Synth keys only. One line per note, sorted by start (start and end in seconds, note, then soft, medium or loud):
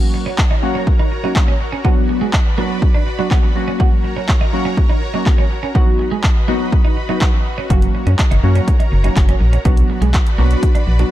0.00 0.25 F#3 medium
0.00 0.25 A#3 medium
0.00 0.25 C#4 medium
0.00 0.25 F#4 medium
0.63 0.92 F#3 medium
0.63 0.92 A#3 medium
0.63 0.92 C#4 medium
0.63 0.92 F#4 medium
1.23 1.53 F#3 medium
1.23 1.53 A#3 medium
1.23 1.53 C#4 medium
1.23 1.53 F#4 medium
1.84 2.20 F#3 medium
1.84 2.20 B3 medium
1.84 2.20 D4 medium
1.84 2.20 F#4 medium
2.58 2.87 F#3 medium
2.58 2.87 B3 medium
2.58 2.87 D4 medium
2.58 2.87 F#4 medium
3.19 3.48 F#3 medium
3.19 3.48 B3 medium
3.19 3.48 D4 medium
3.19 3.48 F#4 medium
3.55 4.34 F#3 medium
3.55 4.34 A#3 medium
3.55 4.34 C#4 medium
3.55 4.34 F#4 medium
4.53 4.82 F#3 medium
4.53 4.82 A#3 medium
4.53 4.82 C#4 medium
4.53 4.83 F#4 loud
5.14 5.43 F#3 medium
5.14 5.43 A#3 medium
5.14 5.43 C#4 medium
5.14 5.44 F#4 medium
5.75 6.10 F#3 medium
5.75 6.10 B3 medium
5.75 6.10 D#4 medium
5.75 6.10 F#4 loud
6.48 6.77 F#3 medium
6.48 6.78 B3 medium
6.48 6.78 D#4 medium
6.48 6.78 F#4 loud
7.09 7.39 F#3 medium
7.09 7.39 B3 medium
7.09 7.39 D#4 medium
7.09 7.39 F#4 medium
7.70 8.05 F#3 medium
7.70 8.05 A#3 medium
7.70 8.05 C#4 medium
7.70 8.06 F#4 medium
8.43 8.73 F#3 medium
8.43 8.73 A#3 medium
8.43 8.73 C#4 medium
8.43 8.73 F#4 medium
9.04 9.34 F#3 medium
9.04 9.34 A#3 medium
9.04 9.34 C#4 medium
9.04 9.34 F#4 medium
9.65 10.00 F#3 medium
9.65 10.00 B3 medium
9.65 10.00 D4 medium
9.65 10.01 F#4 medium
10.38 10.68 F#3 medium
10.38 10.68 B3 medium
10.38 10.68 D4 medium
10.38 10.68 F#4 loud
10.99 11.11 F#3 medium
10.99 11.11 B3 medium
10.99 11.11 D4 medium
10.99 11.11 F#4 medium